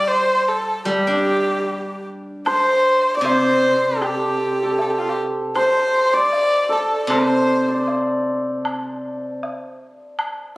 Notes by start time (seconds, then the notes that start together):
Already playing: G3
0.08 C5
0.48 A4
0.84 G3 G4 A4
1.07 D4
2.46 C5, high woodblock
3.17 D5
3.21 C3 C5
3.25 low woodblock
3.96 A4
4.01 G4, high woodblock
4.63 A4
4.79 A4, low woodblock
4.90 G4
4.99 F4
5.09 G4
5.56 C5, high woodblock
6.13 D5
6.32 low woodblock
6.69 A4
7.07 C3 C5, high woodblock
7.68 D5
7.88 low woodblock
8.65 high woodblock
9.43 low woodblock
10.19 high woodblock